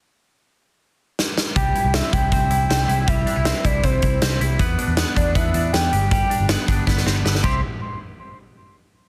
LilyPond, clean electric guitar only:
\new Staff \with { instrumentName = "Clean electric guitar" } { \time 4/4 \key c \major \tempo 4 = 158 r1 | g8 e'8 c'8 e'8 c'8 e'8 c'8 e'8 | g8 d'16 e'16 c'8 e'8 c'8 e'8 c'8 e'8 | b8 d'8 b8 d'8 b8 d'8 b8 g8 |
g8 d'8 b8 d'8 b8 c'16 d'16 b8 <g c' e' g'>8 | r1 | }